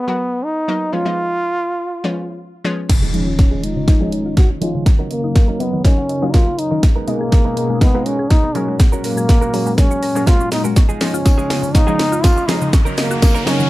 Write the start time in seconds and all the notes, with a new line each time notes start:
Already playing: B3
0.08 F#3 B3 F#4 A#4
0.44 D#4
0.68 F#3 A#3 B3 D#4
0.92 F3 G#3 B3 C#4 F4
1.05 F3 G#3 B3 D#4
2.04 F3 G#3 B3 C#4
2.64 F3 G#3 B3 C#4
2.89 D#3 G#3 C#4 F4 C#5, muted clean electric guitar stroke, kick, snare, closed hi-hat, crash, impact
3.02 F3 G#3 D#4 G#4 G#5
3.14 F3 G#3 C#4 D#4 G#4 C#5, closed hi-hat
3.27 F4, muted clean electric guitar stroke
3.38 D#4, muted clean electric guitar stroke, kick, snare, closed hi-hat
3.51 F3 G#3 D#4 G#4
3.63 F3 G#3 D#4, closed hi-hat
3.76 C#3, muted clean electric guitar stroke
3.87 F3 G#3 C#4 D#4, muted clean electric guitar stroke, kick, snare, closed hi-hat
4.00 F3 G#3 C#4 D#4 G#4 G#5
4.12 F3 G#3 D#4 G#4 C#5, closed hi-hat
4.25 F4, muted clean electric guitar stroke
4.37 D#4 F#4, muted clean electric guitar stroke, kick, snare, closed hi-hat
4.49 C#4, muted clean electric guitar stroke
4.61 F3 G#3 C#4 D#4 F4 G#4, closed hi-hat
4.74 C#3 F3 G#3 D#4 G#4
4.86 C#3 F#3 C#4 D#4 A#4 A#5, kick, snare, closed hi-hat
4.99 F#3 C#4 D#4 A#4 F#5
5.11 F#3 A#3 C#4 D#4 A#4 D#5, closed hi-hat
5.24 D#4
5.35 C#4, muted clean electric guitar stroke, kick, snare, closed hi-hat
5.48 F#3 C#4 D#4 A#4
5.60 F#3 A#3 B3 C#4 D#4, muted clean electric guitar stroke, closed hi-hat
5.73 D#3, muted clean electric guitar stroke
5.84 F#3 A#3 C#4 D#4 A#5, muted clean electric guitar stroke, kick, snare, closed hi-hat
5.97 F#5, muted clean electric guitar stroke
6.09 D#5, closed hi-hat
6.22 F#3 A#3 C#4 D#4 F4, muted clean electric guitar stroke
6.33 F#3 C#4 D#4 F4 A#4, kick, snare, closed hi-hat
6.47 A#3, muted clean electric guitar stroke
6.58 D#4, muted clean electric guitar stroke, closed hi-hat
6.71 D#3 F#3 C#4 D#4 A#4
6.83 B2 G#3 G#4 D#5, muted clean electric guitar stroke, kick, snare, closed hi-hat
6.96 G#3 B3 D#4 A#4 B4
7.07 B2 G#3 A#3 B3 D#4 A#4, closed hi-hat
7.21 G#4
7.32 D#4, muted clean electric guitar stroke, kick, snare, closed hi-hat
7.45 G#3 B3 D#4 A#4
7.57 G#3 A#3 B3 D#4 A#4, closed hi-hat
7.70 G#3, muted clean electric guitar stroke
7.81 G#3 A#3 B3 D#4 D#5, muted clean electric guitar stroke, kick, snare, closed hi-hat
7.94 G#3 A#3 B3 D#4 F4 A#4 B4
8.06 G#3 B3 C#4 D#4 A#4, closed hi-hat
8.19 G#4, muted clean electric guitar stroke
8.30 D#4, muted clean electric guitar stroke, kick, snare, closed hi-hat
8.44 B3, muted clean electric guitar stroke
8.55 A#2 F#3 G#3 A#3 C#4 F#4 A#4, closed hi-hat
8.68 G#3 C#4 F#4 A#4
8.80 F#5, muted clean electric guitar stroke, kick, snare, closed hi-hat, shaker
8.92 G#3 C#4 F#4 A#4 C#5, shaker
9.04 G#3 A#3 C#4 F#4 A#4, open hi-hat, shaker
9.17 G#4, muted clean electric guitar stroke, shaker
9.29 F#4, muted clean electric guitar stroke, kick, snare, closed hi-hat, shaker
9.41 G#3 C#4 F#4 A#4, shaker
9.53 F#3 G#3 A#3 C#4, muted clean electric guitar stroke, open hi-hat, shaker
9.66 G#3, muted clean electric guitar stroke, shaker
9.78 F#3 G#3 A#3 C#4 F#5, muted clean electric guitar stroke, kick, snare, closed hi-hat, shaker
9.90 C#5, muted clean electric guitar stroke, shaker
10.03 A#4, open hi-hat, shaker
10.15 F#3 G#3 A#3 C#4 G#4, muted clean electric guitar stroke, shaker
10.26 G#3 C#4 F4 F#4 A#4, kick, snare, closed hi-hat, shaker
10.40 C#4, muted clean electric guitar stroke, shaker
10.51 D#4, muted clean electric guitar stroke, snare, open hi-hat, shaker
10.64 G#3 C#4 F#4 A#4, shaker
10.76 C#3 F3 D#4 F4 C#6, kick, snare, closed hi-hat, riser, shaker
10.89 F3 G#3 D#4 G#4 G#5, shaker
11.00 F3 G#3 C#4 D#4 G#4 C#5, snare, open hi-hat, shaker
11.14 F4, muted clean electric guitar stroke, shaker
11.25 D#4, muted clean electric guitar stroke, kick, snare, closed hi-hat, tambourine, shaker
11.38 F3 G#3 D#4 G#4, shaker
11.49 F3 G#3 D#4 G#4, snare, open hi-hat, shaker
11.63 C#3, muted clean electric guitar stroke, shaker
11.74 F3 G#3 C#4 D#4 F4 C#6, muted clean electric guitar stroke, kick, snare, closed hi-hat, shaker
11.87 F3 G#3 C#4 D#4 G#4 G#5, shaker
11.99 F3 G#3 D#4 G#4 C#5, snare, open hi-hat, shaker
12.12 F4, muted clean electric guitar stroke, shaker
12.23 D#4 F4, muted clean electric guitar stroke, kick, snare, closed hi-hat, tambourine, shaker
12.36 C#4, muted clean electric guitar stroke, shaker
12.48 F3 G#3 C#4 D#4 G#4, snare, open hi-hat, shaker
12.61 C#3 F3 G#3 D#4 G#4, shaker
12.73 C#3 F#3 F#4 A#4 C#6, muted clean electric guitar stroke, kick, snare, closed hi-hat, shaker
12.85 F#3 C#4 D#4 A#4 A#5, shaker
12.97 F#3 A#3 C#4 D#4 A#4 D#5, snare, open hi-hat, shaker
13.11 F#4, shaker
13.21 D#4, muted clean electric guitar stroke, kick, snare, closed hi-hat, tambourine, shaker
13.35 F#3 C#4 D#4 A#4, shaker
13.46 F#3 A#3 C#4 D#4, muted clean electric guitar stroke, snare, open hi-hat, shaker
13.59 D#3, muted clean electric guitar stroke, shaker